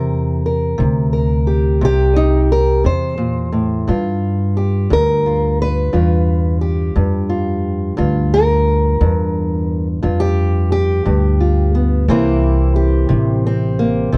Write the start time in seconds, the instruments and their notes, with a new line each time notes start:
Already playing: upright bass E2, steel-string acoustic guitar C3 G4 A#4
0.46 steel-string acoustic guitar A#4
0.78 upright bass D2, steel-string acoustic guitar C3
1.13 steel-string acoustic guitar A#4
1.47 steel-string acoustic guitar G4
1.81 upright bass C2, steel-string acoustic guitar C3 G4
2.16 steel-string acoustic guitar D#4
2.52 steel-string acoustic guitar A#4
2.84 upright bass E2, steel-string acoustic guitar C3 C5
3.18 steel-string acoustic guitar A#2
3.52 steel-string acoustic guitar A2
3.87 steel-string acoustic guitar G2 F4, upright bass G2
4.57 steel-string acoustic guitar G4
4.90 upright bass D2, steel-string acoustic guitar G2 A#4
5.26 steel-string acoustic guitar F4
5.62 steel-string acoustic guitar B4
5.93 upright bass E2, steel-string acoustic guitar G2 F4
6.61 steel-string acoustic guitar G4
6.96 upright bass F2, steel-string acoustic guitar G2
7.29 steel-string acoustic guitar F4
7.97 upright bass D2, steel-string acoustic guitar G2 F4
8.34 steel-string acoustic guitar A#4
9.01 upright bass E2, steel-string acoustic guitar G2
10.03 upright bass F2, steel-string acoustic guitar G2 F4
10.20 steel-string acoustic guitar G4
10.72 steel-string acoustic guitar G4
11.05 upright bass D2, steel-string acoustic guitar G2
11.40 steel-string acoustic guitar F4
11.75 steel-string acoustic guitar B3
12.08 upright bass C2, steel-string acoustic guitar C3 E3 A#3 C4 E4
12.76 steel-string acoustic guitar G4
13.09 upright bass A1, steel-string acoustic guitar C3
13.47 steel-string acoustic guitar C4
13.79 steel-string acoustic guitar A#3
14.12 upright bass A#1, steel-string acoustic guitar C3 C4